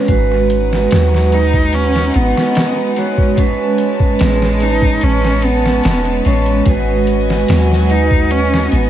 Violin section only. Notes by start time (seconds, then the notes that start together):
0.08 G#3 D#4 B4 F#5
3.38 C#5 A5
6.66 F#4 D#5 G#5